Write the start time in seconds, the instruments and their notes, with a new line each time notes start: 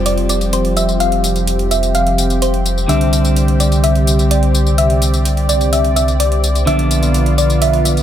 Already playing: detuned saw bass F1, analog synth pad F3 C4 G4, clean electric guitar F3 G3 C4 F4
0.06 synth pluck D5, closed hi-hat, tambourine
0.18 closed hi-hat
0.29 synth pluck D5, closed hi-hat, tambourine
0.41 closed hi-hat, tambourine
0.53 synth pluck C5, closed hi-hat, tambourine
0.65 closed hi-hat
0.77 synth pluck E5, closed hi-hat, tambourine
0.89 tambourine
1.00 synth pluck F5, closed hi-hat, tambourine
1.12 closed hi-hat
1.24 closed hi-hat, tambourine
1.36 closed hi-hat, tambourine
1.47 closed hi-hat, tambourine
1.59 closed hi-hat
1.71 synth pluck E5, closed hi-hat, tambourine
1.83 closed hi-hat, tambourine
1.95 synth pluck F5, closed hi-hat, tambourine
2.07 closed hi-hat
2.18 closed hi-hat, tambourine
2.30 closed hi-hat, tambourine
2.42 synth pluck C5, closed hi-hat, tambourine
2.54 closed hi-hat
2.66 closed hi-hat, tambourine
2.78 tambourine
2.88 detuned saw bass C2, clean electric guitar D3 G3 C4 D4, analog synth pad D5, synth pluck E5, closed hi-hat, tambourine
3.01 closed hi-hat
3.13 closed hi-hat, tambourine
3.25 closed hi-hat, tambourine
3.36 closed hi-hat, tambourine
3.48 closed hi-hat
3.60 synth pluck D5, closed hi-hat, tambourine
3.72 closed hi-hat, tambourine
3.84 synth pluck E5, closed hi-hat, tambourine
3.95 closed hi-hat
4.07 closed hi-hat, tambourine
4.19 closed hi-hat, tambourine
4.31 synth pluck D5, closed hi-hat, tambourine
4.43 closed hi-hat
4.55 closed hi-hat, tambourine
4.67 tambourine
4.78 synth pluck E5, closed hi-hat, tambourine
4.90 closed hi-hat
5.02 closed hi-hat, tambourine
5.14 closed hi-hat, tambourine
5.25 closed hi-hat, tambourine
5.37 closed hi-hat
5.49 synth pluck D5, closed hi-hat, tambourine
5.61 closed hi-hat, tambourine
5.73 synth pluck E5, closed hi-hat, tambourine
5.84 closed hi-hat
5.96 synth pluck E5, closed hi-hat, tambourine
6.08 closed hi-hat, tambourine
6.20 synth pluck D5, closed hi-hat, tambourine
6.32 closed hi-hat
6.44 closed hi-hat, tambourine
6.55 closed hi-hat, tambourine
6.66 detuned saw bass B1, clean electric guitar D3 F3 B3 D4, analog synth pad B3 F4, synth pluck E5, closed hi-hat, tambourine
6.79 closed hi-hat
6.91 closed hi-hat, tambourine
7.03 closed hi-hat, tambourine
7.14 closed hi-hat, tambourine
7.26 closed hi-hat
7.38 synth pluck D5, closed hi-hat, tambourine
7.50 closed hi-hat, tambourine
7.62 synth pluck E5, closed hi-hat, tambourine
7.73 closed hi-hat
7.85 synth pluck E5, closed hi-hat, tambourine
7.97 closed hi-hat, tambourine